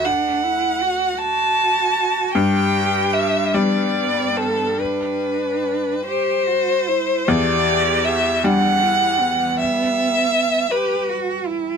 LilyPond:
<<
  \new Staff \with { instrumentName = "Violin" } { \time 6/8 \key e \minor \tempo 4. = 52 fis''4. a''4. | g''4 e''8 d''4 a'8 | b'4. c''4. | d''4 e''8 fis''4. |
e''4. b'8 r4 | }
  \new Staff \with { instrumentName = "Cello" } { \time 6/8 \key e \minor d'8 e'8 fis'8 fis'4. | g'4. b4. | d'4. g'8 fis'8 e'8 | g'4. d'8 e'8 b8~ |
b4. g'8 fis'8 e'8 | }
  \new Staff \with { instrumentName = "Upright piano" } { \clef bass \time 6/8 \key e \minor a2. | g,4. g4.~ | g2. | e,4. g4.~ |
g2. | }
>>